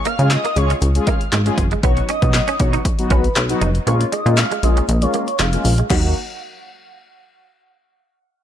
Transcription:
0.05 0.13 A#3 medium
0.05 0.28 F5 medium
0.05 closed hi-hat medium
0.19 0.37 C#3 loud
0.19 0.37 G#3 medium
0.19 0.37 C#4 medium
0.19 0.37 F4 medium
0.19 0.37 G#4 medium
0.19 closed hi-hat medium
0.30 0.54 D#5 medium
0.30 snare medium
0.30 clap loud
0.30 closed hi-hat medium
0.44 0.51 A#3 medium
0.44 closed hi-hat medium
0.56 0.74 C#2 medium
0.56 0.75 G#3 medium
0.56 0.75 C#4 medium
0.56 0.76 F4 medium
0.56 0.76 G#4 medium
0.56 0.69 C#5 medium
0.56 muted clean electric guitar stroke soft
0.56 closed hi-hat medium
0.70 0.77 C#4 medium
0.70 closed hi-hat medium
0.82 1.00 C#2 loud
0.82 closed hi-hat medium
0.95 1.20 G#3 medium
0.95 1.20 C#4 medium
0.95 1.20 F4 medium
0.95 1.20 G#4 medium
0.95 closed hi-hat medium
1.07 1.15 A#3 medium
1.07 1.19 F5 medium
1.07 kick loud
1.07 closed hi-hat medium
1.21 closed hi-hat soft
1.32 1.51 G#1 loud
1.32 1.41 G#3 medium
1.32 snare medium
1.32 clap loud
1.32 closed hi-hat medium
1.46 1.64 G#3 medium
1.46 1.64 C#4 medium
1.46 1.64 F4 medium
1.46 1.64 G#4 loud
1.46 muted clean electric guitar stroke soft
1.46 closed hi-hat medium
1.58 1.76 F#1 loud
1.58 kick medium
1.58 closed hi-hat medium
1.71 1.79 G#3 medium
1.71 closed hi-hat soft
1.83 2.02 B1 loud
1.83 2.02 F#3 medium
1.83 2.02 B3 medium
1.83 1.91 B3 medium
1.83 2.03 D#4 medium
1.83 2.03 F#4 medium
1.83 2.06 C#5 loud
1.83 kick loud
1.83 closed hi-hat medium
1.97 muted clean electric guitar stroke soft
1.97 closed hi-hat medium
2.09 2.17 C#4 medium
2.09 2.32 D#5 medium
2.09 closed hi-hat medium
2.22 2.40 B2 medium
2.22 2.40 F#3 medium
2.22 2.41 B3 medium
2.22 2.41 D#4 medium
2.22 2.41 F#4 medium
2.22 kick loud
2.22 closed hi-hat medium
2.34 2.57 D#5 medium
2.34 snare loud
2.34 clap loud
2.34 clap medium
2.34 closed hi-hat loud
2.48 2.55 C#4 medium
2.48 closed hi-hat medium
2.59 2.78 B1 medium
2.59 2.79 F#3 medium
2.59 2.79 B3 medium
2.59 2.79 D#4 medium
2.59 2.79 F#4 medium
2.59 2.72 C#5 medium
2.59 muted clean electric guitar stroke soft
2.59 kick loud
2.59 closed hi-hat medium
2.73 2.80 D#4 medium
2.73 closed hi-hat medium
2.85 kick medium
2.85 closed hi-hat medium
2.98 3.23 F#3 medium
2.98 3.24 B3 medium
2.98 3.24 D#4 medium
2.98 3.24 F#4 medium
2.98 closed hi-hat medium
3.10 3.29 B1 loud
3.10 3.18 C#4 medium
3.10 3.23 B4 medium
3.10 kick loud
3.10 closed hi-hat medium
3.24 closed hi-hat soft
3.36 3.54 B1 medium
3.36 snare medium
3.36 clap medium
3.36 clap loud
3.36 closed hi-hat medium
3.49 3.68 F#3 medium
3.49 3.68 B3 medium
3.49 3.68 D#4 medium
3.49 3.68 F#4 loud
3.49 closed hi-hat medium
3.61 3.80 F1 loud
3.61 3.69 D#4 medium
3.61 closed hi-hat medium
3.75 closed hi-hat soft
3.86 4.05 A#1 loud
3.86 4.06 G#3 medium
3.86 4.06 A#3 medium
3.86 3.95 A#3 medium
3.86 4.06 C#4 medium
3.86 4.06 F4 medium
3.86 4.09 C#5 loud
3.86 closed hi-hat medium
4.00 muted clean electric guitar stroke soft
4.00 closed hi-hat medium
4.12 4.20 G#3 medium
4.12 4.35 D#5 medium
4.12 closed hi-hat medium
4.26 4.44 A#2 loud
4.26 4.44 G#3 medium
4.26 4.44 A#3 medium
4.26 4.44 C#4 medium
4.26 4.44 F4 medium
4.26 closed hi-hat medium
4.37 4.61 F5 medium
4.37 snare loud
4.37 clap medium
4.37 clap loud
4.37 closed hi-hat loud
4.51 4.58 G#3 medium
4.51 closed hi-hat medium
4.63 4.81 A#1 medium
4.63 4.82 G#3 medium
4.63 4.82 A#3 medium
4.63 4.82 C#4 medium
4.63 4.82 F4 medium
4.63 4.75 D#5 medium
4.63 muted clean electric guitar stroke soft
4.63 closed hi-hat medium
4.77 4.84 C#4 medium
4.77 closed hi-hat medium
4.89 5.07 A#1 loud
4.89 closed hi-hat loud
5.02 5.27 G#3 medium
5.02 5.27 A#3 medium
5.02 5.27 C#4 medium
5.02 5.27 F4 medium
5.02 5.13 C#5 medium
5.02 closed hi-hat medium
5.14 5.22 A#3 medium
5.14 closed hi-hat medium
5.27 5.38 C#5 medium
5.27 closed hi-hat soft
5.39 5.58 F1 loud
5.39 5.47 G#3 medium
5.39 5.76 F5 medium
5.39 snare medium
5.39 clap medium
5.39 clap loud
5.39 closed hi-hat medium
5.53 5.71 G#3 medium
5.53 5.71 A#3 medium
5.53 5.71 C#4 medium
5.53 5.71 F4 medium
5.53 muted clean electric guitar stroke soft
5.53 closed hi-hat medium
5.65 5.83 A#1 medium
5.65 open hi-hat medium
5.78 5.85 G#3 medium
5.78 closed hi-hat soft
5.90 6.14 D#2 loud
5.90 6.14 F#3 medium
5.90 6.06 F#3 medium
5.90 6.14 A#3 medium
5.90 6.14 D#4 medium
5.90 6.14 F#4 loud
5.90 6.14 F#5 medium
5.90 kick loud
5.90 clap medium
5.90 crash medium

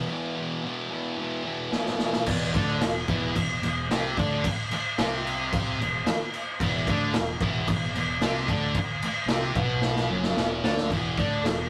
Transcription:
0.00 0.12 E3 medium
0.08 0.61 E2 loud
0.08 0.39 B2 medium
0.13 0.36 E3 loud
0.37 0.63 B2 medium
0.37 0.66 E3 medium
0.63 1.15 E2 loud
0.63 0.92 B2 loud
0.67 0.88 E3 loud
0.90 1.17 B2 medium
0.90 1.19 E3 medium
1.16 1.47 E2 medium
1.16 1.45 B2 medium
1.20 1.43 E3 medium
1.44 1.69 E2 medium
1.44 1.72 B2 medium
1.44 1.73 E3 medium
1.70 2.24 E2 medium
1.70 2.00 B2 medium
1.70 1.97 E3 medium
1.70 snare medium
1.86 snare medium
1.98 2.26 B2 medium
1.98 2.24 E3 medium
1.98 snare medium
2.13 snare loud
2.26 2.51 E1 loud
2.26 2.53 E2 loud
2.26 2.53 E3 loud
2.26 kick loud
2.26 crash loud
2.26 crash medium
2.53 2.79 D2 medium
2.53 2.81 D3 loud
2.53 2.81 D4 loud
2.53 kick loud
2.53 crash medium
2.81 3.07 E1 medium
2.81 3.03 E2 medium
2.81 snare loud
2.81 crash medium
3.08 3.33 E1 loud
3.08 3.34 E2 medium
3.08 3.35 E3 loud
3.08 kick loud
3.08 crash medium
3.36 3.61 E1 medium
3.36 3.57 E2 medium
3.36 kick medium
3.36 crash medium
3.61 3.87 E1 medium
3.61 3.85 E2 medium
3.61 crash medium
3.88 4.14 C2 loud
3.88 4.16 C3 loud
3.88 4.17 C4 loud
3.88 snare loud
3.88 crash medium
4.17 4.42 D2 loud
4.17 4.43 D3 medium
4.17 4.44 D4 loud
4.17 kick loud
4.17 crash medium
4.44 muted fingered electric bass stroke soft
4.44 muted distorted electric guitar stroke medium
4.44 kick loud
4.44 crash medium
4.71 muted distorted electric guitar stroke medium
4.71 muted fingered electric bass stroke soft
4.71 crash medium
4.98 5.75 C2 medium
4.98 5.78 C3 loud
4.98 5.79 C4 loud
4.98 snare loud
4.98 crash medium
5.27 crash medium
5.53 kick loud
5.53 crash medium
5.79 6.04 E1 medium
5.79 6.01 E2 medium
5.79 crash medium
6.06 muted fingered electric bass stroke soft
6.06 muted distorted electric guitar stroke medium
6.06 snare loud
6.06 crash medium
6.33 crash medium
6.59 6.84 E1 loud
6.59 6.86 E2 loud
6.59 6.87 E3 loud
6.59 kick loud
6.59 crash medium
6.86 7.11 D2 loud
6.86 7.14 D3 medium
6.86 7.14 D4 loud
6.86 kick loud
6.86 crash medium
7.14 7.39 E1 medium
7.14 7.36 E2 medium
7.14 snare loud
7.14 crash medium
7.40 7.65 E1 loud
7.40 7.67 E2 medium
7.40 7.67 E3 loud
7.40 kick loud
7.40 crash medium
7.67 7.92 E1 medium
7.67 7.90 E2 medium
7.67 kick loud
7.67 crash medium
7.94 8.19 E1 medium
7.94 8.16 E2 medium
7.94 crash medium
8.20 8.46 C2 loud
8.20 8.48 C3 medium
8.20 8.48 C4 loud
8.20 snare loud
8.20 crash medium
8.48 8.73 D2 loud
8.48 8.74 D3 loud
8.48 8.75 D4 loud
8.48 kick loud
8.48 crash medium
8.74 muted fingered electric bass stroke soft
8.74 muted distorted electric guitar stroke medium
8.74 kick loud
8.74 crash medium
8.99 muted fingered electric bass stroke soft
8.99 crash medium
9.04 muted distorted electric guitar stroke medium
9.26 9.52 C2 medium
9.26 9.55 C3 loud
9.26 snare loud
9.26 crash medium
9.30 9.56 C4 loud
9.55 10.05 B1 loud
9.55 10.09 B2 loud
9.55 10.09 B3 loud
9.55 kick loud
9.55 crash medium
9.81 snare medium
9.96 snare medium
10.08 10.34 F#1 loud
10.08 10.36 F#2 loud
10.08 10.37 F#3 loud
10.23 snare medium
10.37 10.62 E1 medium
10.37 10.63 E2 loud
10.37 10.63 E3 loud
10.37 snare loud
10.63 10.88 D2 loud
10.63 10.90 D3 medium
10.63 10.90 D4 loud
10.63 snare loud
10.77 snare loud
10.90 11.15 E1 loud
10.90 11.17 E2 medium
10.90 11.18 E3 loud
10.90 kick loud
10.90 crash medium
11.17 11.42 D2 medium
11.17 11.44 D3 medium
11.17 11.44 D4 loud
11.17 kick loud
11.17 crash medium
11.43 11.69 E1 medium
11.43 11.66 E2 medium
11.43 11.57 A4 loud
11.43 snare loud
11.43 crash medium
11.59 11.69 B4 medium

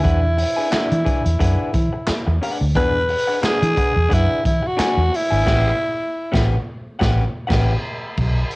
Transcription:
0.00 0.25 D4 medium
0.00 2.39 E4 medium
0.00 0.22 G#4 medium
0.00 0.22 B4 medium
0.05 0.43 E2 loud
0.05 0.21 F#5 medium
0.05 kick loud
0.05 closed hi-hat medium
0.23 muted clean electric guitar stroke soft
0.38 muted clean electric guitar stroke soft
0.38 open hi-hat medium
0.57 0.69 D4 soft
0.57 0.70 G#4 medium
0.57 0.71 B4 medium
0.57 0.71 G#5 medium
0.71 0.93 D4 medium
0.71 0.90 G#4 medium
0.71 0.89 B4 medium
0.71 0.89 F#5 medium
0.71 muted fingered electric bass stroke soft
0.71 snare loud
0.71 clap medium
0.71 closed hi-hat medium
0.90 1.02 E3 medium
0.90 muted clean electric guitar stroke medium
0.90 closed hi-hat medium
1.04 1.23 D4 medium
1.04 1.23 G#4 medium
1.04 1.23 B4 medium
1.04 1.23 G#5 medium
1.04 kick medium
1.04 closed hi-hat medium
1.25 1.36 E2 medium
1.25 muted clean electric guitar stroke soft
1.25 closed hi-hat medium
1.39 1.54 F#2 medium
1.39 1.71 D4 medium
1.39 1.71 G#4 medium
1.39 1.71 B4 medium
1.39 1.72 F#5 medium
1.39 kick medium
1.39 closed hi-hat loud
1.73 1.88 E3 loud
1.73 muted clean electric guitar stroke soft
1.73 kick medium
1.73 closed hi-hat medium
1.93 muted clean electric guitar stroke soft
2.07 muted clean electric guitar stroke soft
2.07 muted fingered electric bass stroke medium
2.07 snare loud
2.07 clap medium
2.07 closed hi-hat medium
2.27 2.38 E2 medium
2.27 muted clean electric guitar stroke soft
2.42 2.63 D4 medium
2.42 2.61 G#4 medium
2.42 2.60 B4 medium
2.42 2.60 F#5 medium
2.42 open hi-hat medium
2.61 2.76 D2 loud
2.61 muted clean electric guitar stroke soft
2.75 3.14 E2 loud
2.75 2.97 D4 medium
2.75 2.94 G#4 medium
2.75 2.94 B4 medium
2.75 3.40 B4 loud
2.75 2.93 F#5 medium
2.75 kick loud
2.75 closed hi-hat medium
2.94 muted clean electric guitar stroke soft
3.09 muted clean electric guitar stroke soft
3.09 open hi-hat medium
3.27 3.40 D4 medium
3.27 3.41 G#4 medium
3.27 3.41 B4 medium
3.27 3.42 F#5 medium
3.42 3.64 D4 medium
3.42 3.61 G#4 medium
3.42 4.15 G#4 loud
3.42 3.61 B4 medium
3.42 3.60 F#5 medium
3.42 muted fingered electric bass stroke soft
3.42 snare loud
3.42 clap medium
3.42 closed hi-hat loud
3.61 3.73 E3 medium
3.61 muted clean electric guitar stroke medium
3.61 closed hi-hat medium
3.76 3.94 D4 medium
3.76 3.94 G#4 medium
3.76 3.95 B4 medium
3.76 3.94 F#5 medium
3.76 kick medium
3.76 closed hi-hat medium
3.95 4.07 E2 medium
3.95 muted clean electric guitar stroke soft
4.09 4.25 F#2 loud
4.09 4.41 D4 medium
4.09 4.42 G#4 medium
4.09 4.42 B4 medium
4.09 4.42 F#5 medium
4.09 kick medium
4.09 closed hi-hat medium
4.14 4.46 E4 medium
4.44 4.59 E3 medium
4.44 4.68 E4 medium
4.44 muted clean electric guitar stroke soft
4.44 kick medium
4.44 closed hi-hat medium
4.62 muted clean electric guitar stroke medium
4.67 5.17 F#4 medium
4.77 4.99 D4 medium
4.77 5.00 G#4 medium
4.77 5.00 B4 medium
4.77 5.00 G#5 medium
4.77 muted fingered electric bass stroke medium
4.77 snare loud
4.77 clap medium
4.77 closed hi-hat medium
4.97 5.08 E2 medium
5.11 muted clean electric guitar stroke soft
5.11 open hi-hat medium
5.16 6.50 E4 medium
5.30 5.42 G#1 medium
5.30 5.45 D4 soft
5.30 5.45 G#4 soft
5.30 5.45 B4 medium
5.30 5.45 G#5 medium
5.45 5.71 A1 medium
5.45 5.69 C#4 medium
5.45 5.70 G4 loud
5.45 5.70 B4 loud
5.45 5.70 F#5 loud
5.45 kick loud
5.45 snare loud
5.45 crash medium
6.32 6.56 A1 loud
6.32 6.55 C#4 loud
6.32 6.55 G4 loud
6.32 6.55 B4 loud
6.32 6.56 F#5 loud
6.32 kick loud
6.32 snare loud
6.99 7.24 A1 loud
6.99 7.23 C#4 loud
6.99 7.23 G4 loud
6.99 7.23 B4 loud
6.99 7.22 F#5 loud
6.99 kick loud
6.99 snare loud
7.47 7.74 A1 loud
7.47 7.73 C#4 medium
7.47 7.73 G4 loud
7.47 7.72 B4 medium
7.47 7.72 F#5 medium
7.47 kick loud
7.47 snare loud
7.47 crash medium
8.17 8.42 B1 loud
8.17 kick medium
8.17 crash medium
8.51 open hi-hat medium

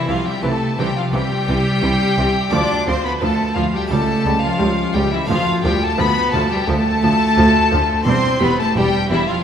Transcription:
0.00 0.10 E3 medium
0.00 2.47 C4 medium
0.00 2.47 E4 medium
0.08 0.17 C2 medium
0.08 0.16 C3 medium
0.08 0.40 C3 medium
0.08 0.16 E3 medium
0.08 0.28 F3 medium
0.08 0.26 F4 medium
0.08 0.26 F5 medium
0.26 0.45 G3 medium
0.26 0.43 G4 medium
0.26 0.43 G5 medium
0.42 0.51 C2 medium
0.42 0.74 C3 medium
0.42 0.51 C3 medium
0.42 0.52 E3 medium
0.42 0.78 A3 medium
0.42 0.78 A4 medium
0.42 0.78 A5 medium
0.78 0.86 C2 medium
0.78 0.86 C3 medium
0.78 1.10 C3 medium
0.78 0.87 E3 medium
0.78 0.98 G3 medium
0.78 0.95 G4 medium
0.78 0.95 G5 loud
0.96 1.15 F3 medium
0.96 1.03 F4 medium
0.96 1.14 F5 medium
1.13 1.21 C2 medium
1.13 1.21 C3 medium
1.13 1.44 C3 medium
1.13 1.22 E3 medium
1.13 2.52 G3 loud
1.13 2.49 G4 loud
1.13 2.49 G5 loud
1.48 1.56 C2 medium
1.48 1.79 C3 medium
1.48 1.56 C3 medium
1.48 1.57 E3 medium
1.82 1.91 C2 medium
1.82 1.90 C3 medium
1.82 2.14 C3 medium
1.82 1.91 E3 medium
2.17 2.26 C2 medium
2.17 2.48 C3 medium
2.17 2.25 C3 medium
2.17 2.26 E3 medium
2.49 2.60 D2 medium
2.49 2.83 D2 medium
2.49 2.61 D2 medium
2.49 2.60 F3 medium
2.49 3.85 A3 medium
2.49 2.89 D4 loud
2.49 3.86 F4 medium
2.49 2.86 D5 medium
2.49 2.87 D6 loud
2.87 3.18 D2 medium
2.87 2.95 D2 medium
2.87 2.95 F3 medium
2.87 3.05 C4 medium
2.87 3.04 C5 medium
2.87 3.04 C6 loud
3.04 3.12 B3 medium
3.04 3.21 B4 medium
3.04 3.11 B5 loud
3.20 3.29 D2 medium
3.20 3.30 D2 medium
3.20 3.53 D2 medium
3.20 3.29 F3 medium
3.20 3.58 A3 medium
3.20 3.56 A4 medium
3.20 3.55 A5 loud
3.54 3.64 D2 medium
3.54 3.87 D2 medium
3.54 3.65 D2 medium
3.54 3.64 F3 medium
3.54 3.76 F3 medium
3.54 3.63 F4 medium
3.54 3.72 F5 medium
3.74 3.91 G3 medium
3.74 3.90 G4 medium
3.74 3.91 G5 medium
3.86 5.23 A3 medium
3.86 5.24 G4 medium
3.86 4.41 A5 loud
3.90 3.98 C#2 medium
3.90 4.22 C#2 medium
3.90 3.99 C#2 medium
3.90 3.98 G3 medium
3.90 4.45 A3 loud
3.90 4.42 A4 medium
4.25 4.33 C#2 medium
4.25 4.56 C#2 medium
4.25 4.33 C#2 medium
4.25 4.33 G3 medium
4.42 4.97 F3 medium
4.42 4.94 F4 medium
4.42 4.94 F5 loud
4.59 4.91 C#2 medium
4.59 4.68 C#2 medium
4.59 4.67 G3 medium
4.93 5.25 C#2 medium
4.93 5.02 C#2 medium
4.93 5.03 C#2 medium
4.93 5.02 G3 medium
4.93 5.14 G3 medium
4.93 5.12 G4 medium
4.93 5.11 G5 medium
5.11 5.29 E3 medium
5.11 5.19 E4 medium
5.11 5.29 E5 loud
5.24 8.00 A3 medium
5.24 8.00 D4 medium
5.24 8.01 F4 medium
5.24 5.63 F5 loud
5.29 5.60 D2 medium
5.29 5.37 D2 medium
5.29 5.38 D2 medium
5.29 5.38 F3 medium
5.29 5.64 F3 loud
5.29 5.63 F4 medium
5.63 5.95 D2 medium
5.63 5.72 D2 medium
5.63 5.72 F3 medium
5.63 5.84 G3 medium
5.63 5.81 G4 medium
5.63 5.81 G5 loud
5.81 6.01 A3 medium
5.81 5.98 A4 medium
5.81 5.99 A5 loud
5.97 6.29 D2 medium
5.97 6.07 D2 medium
5.97 6.07 F3 medium
5.97 6.36 B3 loud
5.97 6.33 B4 medium
5.97 6.32 B5 loud
6.32 6.64 D2 medium
6.32 6.42 D2 medium
6.32 6.42 F3 medium
6.32 6.51 A3 loud
6.32 6.51 A4 medium
6.32 6.50 A5 loud
6.50 6.68 G3 medium
6.50 6.68 G4 medium
6.50 6.68 G5 loud
6.66 6.99 D2 medium
6.66 6.76 D2 medium
6.66 6.76 F3 medium
6.66 8.04 A3 loud
6.66 8.06 A4 loud
6.66 8.06 A5 loud
7.02 7.33 D2 medium
7.02 7.11 D2 medium
7.02 7.11 F3 medium
7.36 7.68 D2 medium
7.36 7.45 D2 medium
7.36 7.45 F3 medium
7.71 8.03 D2 medium
7.71 7.80 D2 medium
7.71 7.80 F3 medium
8.03 8.15 E1 medium
8.03 8.37 E2 medium
8.03 8.14 E2 medium
8.03 9.39 C4 medium
8.03 9.40 E4 medium
8.03 8.40 C5 loud
8.03 8.40 C6 loud
8.07 8.15 G3 medium
8.07 8.44 C4 loud
8.40 8.49 E1 medium
8.40 8.72 E2 medium
8.40 8.49 E2 medium
8.40 8.49 G3 medium
8.40 8.60 B3 loud
8.40 8.58 B4 medium
8.40 8.58 B5 loud
8.59 8.77 A3 medium
8.59 8.66 A4 medium
8.59 8.76 A5 loud
8.75 8.84 E1 medium
8.75 8.83 E2 medium
8.75 9.07 E2 medium
8.75 9.12 G3 medium
8.75 8.85 G3 medium
8.75 9.10 G4 loud
8.75 9.10 G5 loud
9.10 9.19 E1 medium
9.10 9.18 E2 medium
9.10 9.42 E2 medium
9.10 9.27 E3 medium
9.10 9.19 G3 medium
9.10 9.27 E4 loud
9.10 9.27 E5 loud
9.28 9.44 F3 medium
9.28 9.44 F4 medium
9.28 9.44 F5 loud

